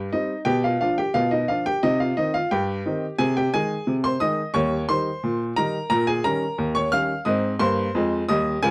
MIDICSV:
0, 0, Header, 1, 2, 480
1, 0, Start_track
1, 0, Tempo, 678733
1, 332, Time_signature, 2, 2, 24, 8
1, 6157, End_track
2, 0, Start_track
2, 0, Title_t, "Upright piano"
2, 0, Program_c, 0, 0
2, 89, Note_on_c, 0, 75, 88
2, 91, Note_on_c, 0, 55, 54
2, 94, Note_on_c, 0, 63, 64
2, 96, Note_on_c, 0, 60, 52
2, 223, Note_off_c, 0, 55, 0
2, 227, Note_off_c, 0, 60, 0
2, 282, Note_off_c, 0, 75, 0
2, 316, Note_off_c, 0, 63, 0
2, 318, Note_on_c, 0, 79, 109
2, 322, Note_on_c, 0, 47, 95
2, 328, Note_on_c, 0, 67, 80
2, 442, Note_off_c, 0, 67, 0
2, 445, Note_off_c, 0, 79, 0
2, 452, Note_on_c, 0, 77, 88
2, 460, Note_on_c, 0, 65, 71
2, 530, Note_off_c, 0, 47, 0
2, 560, Note_off_c, 0, 77, 0
2, 567, Note_off_c, 0, 65, 0
2, 571, Note_on_c, 0, 77, 95
2, 573, Note_on_c, 0, 53, 55
2, 579, Note_on_c, 0, 62, 63
2, 580, Note_on_c, 0, 65, 74
2, 687, Note_off_c, 0, 65, 0
2, 691, Note_off_c, 0, 77, 0
2, 692, Note_on_c, 0, 79, 91
2, 701, Note_on_c, 0, 67, 72
2, 704, Note_off_c, 0, 53, 0
2, 709, Note_off_c, 0, 62, 0
2, 806, Note_on_c, 0, 77, 100
2, 808, Note_off_c, 0, 67, 0
2, 810, Note_on_c, 0, 47, 82
2, 811, Note_off_c, 0, 79, 0
2, 814, Note_on_c, 0, 65, 72
2, 924, Note_off_c, 0, 65, 0
2, 928, Note_off_c, 0, 77, 0
2, 928, Note_on_c, 0, 75, 92
2, 937, Note_on_c, 0, 63, 66
2, 1014, Note_off_c, 0, 47, 0
2, 1045, Note_off_c, 0, 63, 0
2, 1048, Note_on_c, 0, 77, 88
2, 1049, Note_off_c, 0, 75, 0
2, 1050, Note_on_c, 0, 53, 48
2, 1055, Note_on_c, 0, 62, 57
2, 1057, Note_on_c, 0, 65, 70
2, 1165, Note_off_c, 0, 65, 0
2, 1169, Note_off_c, 0, 77, 0
2, 1174, Note_on_c, 0, 79, 101
2, 1179, Note_on_c, 0, 67, 66
2, 1182, Note_off_c, 0, 53, 0
2, 1186, Note_off_c, 0, 62, 0
2, 1286, Note_off_c, 0, 67, 0
2, 1292, Note_off_c, 0, 79, 0
2, 1294, Note_on_c, 0, 75, 105
2, 1296, Note_on_c, 0, 48, 93
2, 1299, Note_on_c, 0, 63, 81
2, 1407, Note_off_c, 0, 63, 0
2, 1412, Note_off_c, 0, 75, 0
2, 1415, Note_on_c, 0, 77, 90
2, 1423, Note_on_c, 0, 65, 69
2, 1498, Note_off_c, 0, 48, 0
2, 1529, Note_off_c, 0, 65, 0
2, 1533, Note_off_c, 0, 77, 0
2, 1535, Note_on_c, 0, 75, 95
2, 1540, Note_on_c, 0, 51, 57
2, 1543, Note_on_c, 0, 60, 57
2, 1543, Note_on_c, 0, 63, 74
2, 1648, Note_off_c, 0, 63, 0
2, 1652, Note_off_c, 0, 75, 0
2, 1654, Note_on_c, 0, 77, 96
2, 1664, Note_on_c, 0, 65, 69
2, 1669, Note_off_c, 0, 51, 0
2, 1671, Note_off_c, 0, 60, 0
2, 1769, Note_off_c, 0, 65, 0
2, 1772, Note_off_c, 0, 77, 0
2, 1776, Note_on_c, 0, 79, 96
2, 1779, Note_on_c, 0, 43, 87
2, 1781, Note_on_c, 0, 67, 76
2, 1980, Note_off_c, 0, 43, 0
2, 2020, Note_on_c, 0, 60, 59
2, 2022, Note_on_c, 0, 51, 60
2, 2025, Note_on_c, 0, 63, 64
2, 2149, Note_off_c, 0, 60, 0
2, 2151, Note_off_c, 0, 51, 0
2, 2153, Note_off_c, 0, 63, 0
2, 2158, Note_off_c, 0, 79, 0
2, 2228, Note_off_c, 0, 67, 0
2, 2252, Note_on_c, 0, 80, 113
2, 2255, Note_on_c, 0, 48, 101
2, 2261, Note_on_c, 0, 68, 79
2, 2367, Note_off_c, 0, 68, 0
2, 2371, Note_off_c, 0, 80, 0
2, 2381, Note_on_c, 0, 79, 97
2, 2388, Note_on_c, 0, 67, 70
2, 2457, Note_off_c, 0, 48, 0
2, 2491, Note_off_c, 0, 67, 0
2, 2496, Note_off_c, 0, 79, 0
2, 2501, Note_on_c, 0, 80, 111
2, 2503, Note_on_c, 0, 51, 62
2, 2506, Note_on_c, 0, 63, 65
2, 2506, Note_on_c, 0, 68, 78
2, 2508, Note_on_c, 0, 56, 64
2, 2631, Note_off_c, 0, 51, 0
2, 2633, Note_off_c, 0, 63, 0
2, 2635, Note_off_c, 0, 56, 0
2, 2737, Note_on_c, 0, 48, 80
2, 2784, Note_off_c, 0, 80, 0
2, 2833, Note_off_c, 0, 68, 0
2, 2856, Note_on_c, 0, 84, 109
2, 2866, Note_on_c, 0, 72, 81
2, 2938, Note_off_c, 0, 48, 0
2, 2970, Note_off_c, 0, 72, 0
2, 2972, Note_on_c, 0, 87, 109
2, 2973, Note_off_c, 0, 84, 0
2, 2973, Note_on_c, 0, 51, 62
2, 2976, Note_on_c, 0, 56, 56
2, 2978, Note_on_c, 0, 75, 87
2, 2982, Note_on_c, 0, 63, 61
2, 3104, Note_off_c, 0, 51, 0
2, 3106, Note_off_c, 0, 56, 0
2, 3110, Note_off_c, 0, 63, 0
2, 3197, Note_off_c, 0, 75, 0
2, 3199, Note_off_c, 0, 87, 0
2, 3209, Note_on_c, 0, 85, 109
2, 3211, Note_on_c, 0, 39, 98
2, 3214, Note_on_c, 0, 73, 84
2, 3224, Note_on_c, 0, 55, 68
2, 3352, Note_off_c, 0, 55, 0
2, 3401, Note_off_c, 0, 85, 0
2, 3415, Note_off_c, 0, 39, 0
2, 3435, Note_off_c, 0, 73, 0
2, 3455, Note_on_c, 0, 84, 110
2, 3458, Note_on_c, 0, 51, 59
2, 3463, Note_on_c, 0, 55, 57
2, 3465, Note_on_c, 0, 72, 80
2, 3467, Note_on_c, 0, 63, 59
2, 3588, Note_off_c, 0, 51, 0
2, 3592, Note_off_c, 0, 55, 0
2, 3594, Note_off_c, 0, 63, 0
2, 3702, Note_on_c, 0, 46, 88
2, 3837, Note_off_c, 0, 84, 0
2, 3901, Note_off_c, 0, 46, 0
2, 3909, Note_off_c, 0, 72, 0
2, 3935, Note_on_c, 0, 82, 112
2, 3938, Note_on_c, 0, 51, 61
2, 3942, Note_on_c, 0, 55, 63
2, 3942, Note_on_c, 0, 70, 83
2, 3944, Note_on_c, 0, 63, 64
2, 4068, Note_off_c, 0, 51, 0
2, 4070, Note_off_c, 0, 55, 0
2, 4072, Note_off_c, 0, 63, 0
2, 4160, Note_off_c, 0, 70, 0
2, 4160, Note_off_c, 0, 82, 0
2, 4171, Note_on_c, 0, 82, 120
2, 4174, Note_on_c, 0, 46, 100
2, 4180, Note_on_c, 0, 70, 92
2, 4287, Note_off_c, 0, 70, 0
2, 4290, Note_off_c, 0, 82, 0
2, 4294, Note_on_c, 0, 80, 107
2, 4302, Note_on_c, 0, 68, 84
2, 4376, Note_off_c, 0, 46, 0
2, 4408, Note_off_c, 0, 68, 0
2, 4412, Note_off_c, 0, 80, 0
2, 4415, Note_on_c, 0, 82, 109
2, 4416, Note_on_c, 0, 51, 56
2, 4420, Note_on_c, 0, 55, 65
2, 4420, Note_on_c, 0, 61, 67
2, 4421, Note_on_c, 0, 70, 84
2, 4546, Note_off_c, 0, 51, 0
2, 4549, Note_off_c, 0, 55, 0
2, 4549, Note_off_c, 0, 61, 0
2, 4656, Note_on_c, 0, 39, 85
2, 4751, Note_off_c, 0, 70, 0
2, 4754, Note_off_c, 0, 82, 0
2, 4772, Note_on_c, 0, 85, 116
2, 4782, Note_on_c, 0, 73, 86
2, 4857, Note_off_c, 0, 39, 0
2, 4888, Note_off_c, 0, 73, 0
2, 4891, Note_off_c, 0, 85, 0
2, 4893, Note_on_c, 0, 89, 121
2, 4897, Note_on_c, 0, 55, 57
2, 4899, Note_on_c, 0, 51, 58
2, 4902, Note_on_c, 0, 77, 88
2, 4904, Note_on_c, 0, 61, 58
2, 5027, Note_off_c, 0, 55, 0
2, 5028, Note_off_c, 0, 51, 0
2, 5032, Note_off_c, 0, 61, 0
2, 5084, Note_off_c, 0, 89, 0
2, 5119, Note_off_c, 0, 77, 0
2, 5128, Note_on_c, 0, 87, 100
2, 5133, Note_on_c, 0, 44, 97
2, 5139, Note_on_c, 0, 75, 76
2, 5145, Note_on_c, 0, 60, 92
2, 5321, Note_off_c, 0, 87, 0
2, 5324, Note_off_c, 0, 44, 0
2, 5331, Note_off_c, 0, 60, 0
2, 5358, Note_off_c, 0, 75, 0
2, 5371, Note_on_c, 0, 84, 116
2, 5373, Note_on_c, 0, 43, 95
2, 5376, Note_on_c, 0, 72, 92
2, 5386, Note_on_c, 0, 58, 92
2, 5564, Note_off_c, 0, 43, 0
2, 5572, Note_off_c, 0, 58, 0
2, 5621, Note_on_c, 0, 41, 93
2, 5631, Note_on_c, 0, 56, 91
2, 5755, Note_off_c, 0, 84, 0
2, 5808, Note_off_c, 0, 41, 0
2, 5815, Note_off_c, 0, 56, 0
2, 5825, Note_off_c, 0, 72, 0
2, 5860, Note_on_c, 0, 87, 118
2, 5862, Note_on_c, 0, 39, 88
2, 5866, Note_on_c, 0, 75, 85
2, 5873, Note_on_c, 0, 55, 88
2, 6049, Note_off_c, 0, 39, 0
2, 6056, Note_off_c, 0, 55, 0
2, 6082, Note_off_c, 0, 75, 0
2, 6083, Note_off_c, 0, 87, 0
2, 6100, Note_on_c, 0, 80, 120
2, 6102, Note_on_c, 0, 37, 104
2, 6109, Note_on_c, 0, 68, 88
2, 6117, Note_on_c, 0, 53, 73
2, 6157, Note_off_c, 0, 37, 0
2, 6157, Note_off_c, 0, 53, 0
2, 6157, Note_off_c, 0, 68, 0
2, 6157, Note_off_c, 0, 80, 0
2, 6157, End_track
0, 0, End_of_file